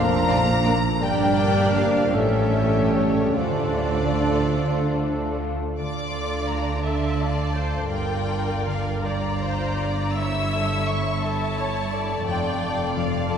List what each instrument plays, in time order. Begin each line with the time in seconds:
Already playing: double bass section A#1, cello section A#2, harp A#2 F3 F4, bassoon F3, french horn section A#3, clarinet D4, oboe A#4, flute F5, violin section A#5
0.28 viola section A#3 D4, harp D4, violin section F4 D5
0.64 viola section A#3 D4, violin section F4 D5, harp F4 A#4
0.99 double bass section G1, cello section G2, harp G2, french horn section G3, bassoon G3, viola section A#3 D4, clarinet D4, violin section G4 D5 G5, oboe A#4, flute D5
1.39 harp D4
1.76 french horn section F3, harp G4 A#4, flute D5, violin section F5
2.13 double bass section A1, cello section A2, harp A2, french horn section E3, bassoon G3, viola section A3 C#4, clarinet C#4, violin section G4 A4, oboe A4, flute C#5
2.17 violin section E5
2.55 harp C#4
2.93 french horn section C#3, harp G4 A4, flute A4, violin section C#5
3.35 double bass section D2, french horn section D3, cello section D3, timpani D3, harp D3, bassoon F3, viola section A3 D4, clarinet D4, violin section F4 A4 D5, flute A4, oboe A4
3.78 harp A3
4.20 harp D4
4.59 harp F4
4.99 harp A4
5.40 harp F4
5.77 double bass section D2, cello section D3, harp D3, violin section F4 D5 D6, viola section D5
6.15 harp A4
6.50 harp A3, violin section A#5
6.85 violin section F4 D5 A5, harp A4, viola section E5
7.21 harp F4, viola section D5
7.55 harp A4, viola section C5
7.88 double bass section G1, cello section G2, harp G2, violin section F4 D5 G5, viola section A#4
8.27 harp G4
8.66 harp D3, violin section F5
9.04 violin section F4 D5 A#5, harp G4, viola section D5
9.42 harp F4, viola section C5
9.82 harp G4, viola section D5
10.17 harp G2, violin section E4 C#5 E6, viola section E5
10.55 harp A4
10.88 harp G3, violin section C#6
11.22 violin section E4 C#5 A5, harp A4, viola section E5
11.58 harp E4, viola section C#5
11.93 harp A4, viola section D5
12.26 double bass section F1, harp F2, cello section F2, violin section F4 D5 G5
12.63 harp A4
12.96 harp F3, violin section F5
13.29 violin section F4 D5 A5, harp A4, viola section A4